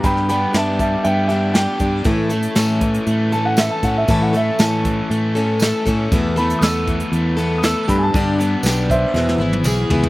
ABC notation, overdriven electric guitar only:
X:1
M:4/4
L:1/8
Q:1/4=118
K:A
V:1 name="Overdriven electric guitar"
=G,, B, D =G, B, D =G D | A,, A, C E, A, C A C | A,, A, C E, A, C A C | E,, A, B, E, A, B, A =G,, |
=G,, B, D =G, E,, E ^G E |]